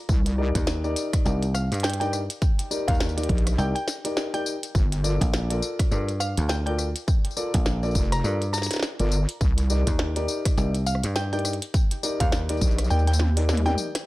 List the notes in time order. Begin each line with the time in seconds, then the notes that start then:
0.09 C2, kick, tambourine
0.26 closed hi-hat, tambourine
0.38 D#4 G4 A#4 D5
0.55 D#2, kick, closed hi-hat, tambourine
0.67 snare, tambourine
0.84 D#4 G4 A#4 D5, tambourine
0.96 closed hi-hat, tambourine
1.13 kick, cross-stick, closed hi-hat, tambourine
1.25 C2 D#4 G4 A#4 D5, tambourine
1.43 closed hi-hat, tambourine
1.54 F5, cross-stick, tambourine
1.72 G2, closed hi-hat, tambourine
1.74 closed hi-hat
1.80 G5, closed hi-hat
1.84 snare, closed hi-hat, tambourine
1.90 closed hi-hat
1.94 closed hi-hat
2.00 D#4 G4 A#4 D5 G5, closed hi-hat, tambourine
2.13 cross-stick, tambourine
2.30 closed hi-hat, tambourine
2.42 kick, tambourine
2.59 closed hi-hat, tambourine
2.71 D#4 G4 A#4 D5, tambourine
2.88 D#2 F5, kick, closed hi-hat, tambourine
2.94 tambourine
3.00 snare, tambourine
3.09 tambourine
3.17 D#4 G4 A#4 D5, closed hi-hat, tambourine
3.23 closed hi-hat
3.29 A#1, kick, closed hi-hat
3.38 closed hi-hat
3.47 cross-stick, closed hi-hat, tambourine
3.58 C2 D#4 G4 A#4 D5 G5, tambourine
3.75 G5, closed hi-hat, tambourine
3.88 snare, tambourine
4.04 D#4 G4 A#4 D5, closed hi-hat, tambourine
4.17 snare, tambourine
4.34 D#4 G4 A#4 D5 G5, closed hi-hat, tambourine
4.46 tambourine
4.63 closed hi-hat, tambourine
4.75 G1, kick, tambourine
4.92 closed hi-hat, tambourine
5.04 F4 A4 A#4 D5, tambourine
5.21 A#1, kick, closed hi-hat, tambourine
5.34 snare, tambourine
5.50 F4 A4 A#4 D5, closed hi-hat, tambourine
5.62 tambourine
5.79 kick, cross-stick, closed hi-hat, tambourine
5.91 G2 F4 A4 A#4 D5, tambourine
6.09 closed hi-hat, tambourine
6.20 F5, cross-stick, tambourine
6.38 D2, closed hi-hat, tambourine
6.49 G5, snare, tambourine
6.66 F4 A4 A#4 D5 G5, closed hi-hat
6.79 cross-stick, tambourine
6.96 closed hi-hat, tambourine
7.08 kick, tambourine
7.25 closed hi-hat
7.31 tambourine
7.37 F4 A4 A#4 D5, tambourine
7.54 A#1, kick, closed hi-hat, tambourine
7.66 snare, tambourine
7.83 F4 A4 A#4 D5, tambourine
7.85 tambourine
7.91 tambourine
7.95 F1, kick, tambourine
8.05 tambourine
8.12 A#5, cross-stick, closed hi-hat, tambourine
8.24 G2 F4 A4 A#4 D5, tambourine
8.42 closed hi-hat, tambourine
8.53 A#5, snare, tambourine
8.58 snare
8.62 snare, tambourine
8.66 snare
8.71 snare, closed hi-hat, tambourine
8.73 snare, tambourine
8.76 snare
8.80 snare
8.83 snare, tambourine
9.00 G1 F4 A4 A#4 D5, closed hi-hat, tambourine
9.12 tambourine
9.29 closed hi-hat, tambourine
9.41 C2, kick, tambourine
9.58 closed hi-hat, tambourine
9.70 D#4 G4 A#4 D5, tambourine
9.87 D#2, kick, closed hi-hat, tambourine
9.99 snare
10.16 D#4 G4 A#4 D5, closed hi-hat, tambourine
10.28 tambourine
10.45 kick, cross-stick, closed hi-hat, tambourine
10.57 C2 D#4 G4 A#4 D5, tambourine
10.75 closed hi-hat, tambourine
10.86 F5, tambourine
10.95 cross-stick
11.04 G2, closed hi-hat, tambourine
11.16 G5, snare, tambourine
11.32 D#4 G4 A#4 D5 G5, closed hi-hat, tambourine
11.39 closed hi-hat
11.45 cross-stick, closed hi-hat, tambourine
11.53 closed hi-hat
11.62 closed hi-hat, tambourine
11.74 kick, tambourine
11.91 closed hi-hat, tambourine
12.03 D#4 G4 A#4 D5, tambourine
12.20 D#2 F5, kick, closed hi-hat, tambourine
12.32 snare, tambourine
12.49 D#4 G4 A#4 D5, closed hi-hat, tambourine
12.52 tambourine
12.57 tambourine
12.61 A#1, kick, tambourine
12.67 tambourine
12.71 tambourine
12.79 cross-stick, closed hi-hat, tambourine
12.84 tambourine
12.90 D#2 D#4 G4 A#4 D5 G5, tambourine
12.99 tambourine
13.07 G5, closed hi-hat, tambourine
13.13 tambourine
13.19 snare, high tom
13.37 D#4 G4 A#4 D5, closed hi-hat, tambourine
13.49 snare, mid tom, tambourine
13.57 closed hi-hat
13.66 D#4 G4 A#4 D5 G5, mid tom, tambourine
13.78 tambourine
13.95 cross-stick, snare, closed hi-hat, tambourine